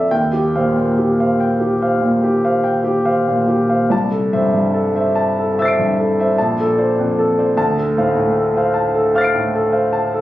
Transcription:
Already playing: F2 A4 D5 E5 A5
0.11 D#2 G5
0.33 G4
0.56 A#2 C5 F5
0.76 A#2
0.98 G4
1.20 C5 F5
1.40 G5
1.60 G4
1.81 C5 F5
2.02 A#2
2.23 G4
2.45 C5 F5
2.64 G5
2.84 G4
3.05 C5 F5
3.28 A#2
3.48 G4
3.69 C5 F5
3.90 C2 A5
4.11 A4
4.33 G2 C5 E5
4.54 G2
4.74 A4
4.96 C5 E5
5.15 A5
5.39 A4
5.59 C5 E5 E6 A6
5.65 C7 D7
5.79 G2
6.00 A4
6.19 C5 E5
6.38 A#1 A5
6.60 A4
6.78 C5 D5
6.99 F2
7.19 A4
7.39 C5 D5
7.57 D2 A5
7.78 A4
7.97 A2 C5 F5
8.15 A2
8.36 A4
8.57 C5 F5
8.74 A5
8.95 A4
9.15 C5 F5 F6 A6
9.21 C7 D7
9.35 A2
9.55 A4
9.72 C5 F5
9.93 A5
10.14 A4

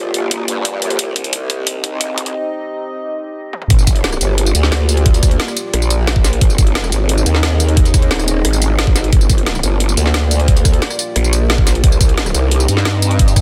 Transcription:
Already playing: G#1 A#3 F4 G4 D5
0.14 closed hi-hat
0.31 kick, closed hi-hat
0.48 G2, closed hi-hat
0.65 kick, closed hi-hat
0.82 closed hi-hat
0.90 closed hi-hat
0.99 C2 C4 D#4 D#5, kick, closed hi-hat
1.16 C2, kick, closed hi-hat
1.24 closed hi-hat
1.33 kick, closed hi-hat
1.50 kick, closed hi-hat
1.67 kick, closed hi-hat
1.84 kick, closed hi-hat
2.01 C2, kick, closed hi-hat
2.18 kick, closed hi-hat
2.26 closed hi-hat
3.53 high tom
3.62 mid tom
3.70 G1 A#3 F4 G4 D5, kick, closed hi-hat
3.79 tambourine
3.87 kick, closed hi-hat, tambourine
3.96 closed hi-hat
4.04 snare, closed hi-hat
4.13 cross-stick, tambourine
4.21 G1, closed hi-hat, tambourine
4.38 closed hi-hat
4.46 tambourine
4.55 D2, closed hi-hat, tambourine
4.63 snare
4.72 snare, closed hi-hat
4.89 closed hi-hat, tambourine
4.97 closed hi-hat
5.06 kick, closed hi-hat
5.14 closed hi-hat, tambourine
5.23 kick, cross-stick, closed hi-hat, tambourine
5.31 closed hi-hat
5.40 snare, closed hi-hat
5.48 cross-stick, tambourine
5.57 closed hi-hat, tambourine
5.74 A#1, cross-stick, closed hi-hat
5.82 tambourine
5.90 closed hi-hat, tambourine
6.07 snare, closed hi-hat
6.16 kick
6.24 snare, closed hi-hat, tambourine
6.33 closed hi-hat
6.41 G#1 C4 D#4 G#4 D#5, kick, closed hi-hat
6.50 tambourine
6.58 kick, closed hi-hat, tambourine
6.67 closed hi-hat
6.75 snare, closed hi-hat
6.84 cross-stick, tambourine
6.92 G#1, closed hi-hat, tambourine
7.09 closed hi-hat
7.18 tambourine
7.26 D#2, closed hi-hat, tambourine
7.35 snare
7.43 snare, closed hi-hat
7.60 closed hi-hat, tambourine
7.69 closed hi-hat
7.77 kick, closed hi-hat
7.85 closed hi-hat, tambourine
7.94 kick, cross-stick, closed hi-hat, tambourine
8.02 closed hi-hat
8.11 D#1, snare, closed hi-hat
8.19 cross-stick, tambourine
8.28 closed hi-hat, tambourine
8.45 G#1, cross-stick, closed hi-hat
8.53 tambourine
8.62 closed hi-hat, tambourine
8.79 snare, closed hi-hat
8.87 kick
8.96 snare, closed hi-hat, tambourine
9.04 closed hi-hat
9.13 G1 A#3 F4 G4 D5, kick, closed hi-hat
9.21 tambourine
9.30 kick, closed hi-hat, tambourine
9.38 closed hi-hat
9.46 snare, closed hi-hat
9.55 cross-stick, tambourine
9.63 G1, closed hi-hat, tambourine
9.80 closed hi-hat
9.89 tambourine
9.97 D2, closed hi-hat, tambourine
10.06 snare
10.14 snare, closed hi-hat
10.31 closed hi-hat, tambourine
10.40 closed hi-hat
10.48 kick, closed hi-hat
10.57 closed hi-hat, tambourine
10.65 kick, cross-stick, closed hi-hat, tambourine
10.74 closed hi-hat
10.82 snare, closed hi-hat
10.90 cross-stick, tambourine
10.99 closed hi-hat, tambourine
11.16 A#1, cross-stick, closed hi-hat
11.24 tambourine
11.33 closed hi-hat, tambourine
11.50 snare, closed hi-hat
11.58 kick
11.67 snare, closed hi-hat, tambourine
11.75 closed hi-hat
11.84 C2 C4 D#4 D#5, kick, closed hi-hat
11.92 tambourine
12.01 kick, closed hi-hat, tambourine
12.09 closed hi-hat
12.18 snare, closed hi-hat
12.26 cross-stick, tambourine
12.35 C2, closed hi-hat, tambourine
12.51 closed hi-hat
12.60 tambourine
12.68 G2, closed hi-hat, tambourine
12.77 snare
12.85 snare, closed hi-hat
13.02 closed hi-hat, tambourine
13.11 closed hi-hat
13.19 kick, closed hi-hat
13.28 closed hi-hat, tambourine
13.36 kick, cross-stick, closed hi-hat, tambourine

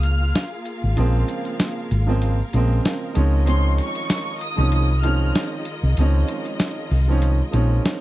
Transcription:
Already playing: C#2 A#3 F4 G#4 A#4 F5
0.03 F6, closed hi-hat
0.35 snare, closed hi-hat
0.65 closed hi-hat
0.84 G#1
0.97 A#1 C#3 F3 G#3 A#3 C4, closed hi-hat
1.28 closed hi-hat
1.45 closed hi-hat
1.60 snare, closed hi-hat
1.91 G#1, closed hi-hat
2.06 C#3 F3 G#3 A#3 C4
2.22 closed hi-hat
2.53 A#1 C#3 F3 G#3 A#3 C4, closed hi-hat
2.85 snare, closed hi-hat
3.13 C#2 D#3 F3 G#3 C4 C#4 F4 D#5, closed hi-hat
3.45 D#3 F3 G#3 C4 C#4 C6, closed hi-hat
3.78 C#6, closed hi-hat
3.95 closed hi-hat
4.10 snare, closed hi-hat
4.41 D#6, closed hi-hat
4.56 C2 D#3 F3 G#3 C4 C#4
4.72 closed hi-hat
5.02 D#3 F3 G#3 C4 C#4 F6, closed hi-hat
5.35 snare, closed hi-hat
5.65 closed hi-hat
5.83 C2
5.97 C#2 D#3 F3 G#3 C4 C#4, closed hi-hat
6.28 closed hi-hat
6.45 closed hi-hat
6.60 snare, closed hi-hat
6.91 C2, open hi-hat
7.08 D#3 F3 G#3 C4 C#4
7.22 closed hi-hat
7.51 A#1 D#3 F3 G#3 C4 C#4, closed hi-hat
7.85 snare, closed hi-hat

